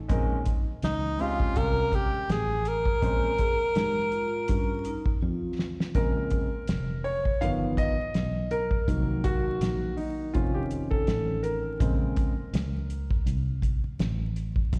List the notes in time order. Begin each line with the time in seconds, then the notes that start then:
Already playing: D#4
0.08 A#1 G#3 C4 C#4 A#4, kick, closed hi-hat
0.45 kick, closed hi-hat
0.82 C#2 D#4, snare, closed hi-hat
1.18 G#3 C4 C#4 F4 G4, open hi-hat
1.40 kick
1.56 C2 A#4, kick, closed hi-hat
1.92 G4, kick, closed hi-hat
2.14 muted fingered electric bass stroke
2.29 A1 G#4, snare, closed hi-hat
2.65 A#4, closed hi-hat
2.85 kick
3.01 A#1 G#3 C4 C#4 C5, kick, closed hi-hat
3.38 G#4, kick, closed hi-hat
3.75 G#2 G4, snare, closed hi-hat
4.12 F4, closed hi-hat
4.48 G2 C#4, kick, closed hi-hat
4.85 D#4, closed hi-hat
5.06 muted fingered electric bass stroke, kick
5.21 F2 F4
5.59 snare
5.80 snare
5.95 A#1 C#3 G#3 C4 A#4, kick, closed hi-hat
6.30 kick, closed hi-hat
6.68 F1, snare, closed hi-hat
7.04 C#5, open hi-hat
7.25 kick
7.41 G1 D#3 F3 B3 F5, closed hi-hat
7.77 D#5, kick, closed hi-hat
8.00 muted fingered electric bass stroke
8.14 B1, snare, closed hi-hat
8.51 A#4, closed hi-hat
8.71 kick
8.88 C2 D#3 F#3 A#3, kick, closed hi-hat
9.24 F#4, kick, closed hi-hat
9.61 A#1, snare, closed hi-hat
9.97 D#4, open hi-hat
10.34 F1 D#3 C4 C#4 F4, kick, closed hi-hat
10.54 G4
10.71 closed hi-hat
10.91 A4, kick
11.07 A1, snare, closed hi-hat
11.43 A#4, closed hi-hat
11.80 A#1 C#3 G#3 C4, kick, closed hi-hat
12.16 kick, closed hi-hat
12.53 C#2, snare, closed hi-hat
12.90 closed hi-hat
13.10 kick
13.26 C2, closed hi-hat
13.62 kick, closed hi-hat
13.84 muted fingered electric bass stroke
13.99 A1, snare, closed hi-hat
14.36 closed hi-hat
14.56 kick
14.73 A#1, kick, closed hi-hat